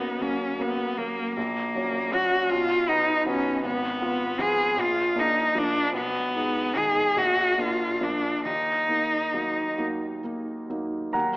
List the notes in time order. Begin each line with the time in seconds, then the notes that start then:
Already playing: F#2 F#3 A#3 B3
0.21 F#3 A#3 C#4
0.59 F#3 A#3 B3
0.98 F#3 A#3
1.36 A#1 A#3
1.75 F#3 C#4
2.12 F#3 C#4 F#4
2.50 B1 F4
2.89 B3 D#4
3.26 F#3 B3 C#4 D#4
3.64 G#1 B3
4.01 B3 F4
4.39 F3 B3 F4 G#4
4.77 A#1
4.81 F4
5.15 A#3 D4 D#4
5.55 F3 A#3 D4
5.93 B1 B3
6.35 G#3 D#4
6.75 D#3 G#3 D#4 G#4
7.16 A#1 F#4
7.58 A#3 D4 F4
8.01 F3 A#3 D4
8.45 D#2 D#4
8.89 A#3 D#4
9.34 F#3 A#3 D#4
9.78 F#3 A#3 D#4
10.24 A#3 D#4
10.69 F#3 A#3 D#4
11.13 D#2 A#4 F#5 A#5
11.17 F#3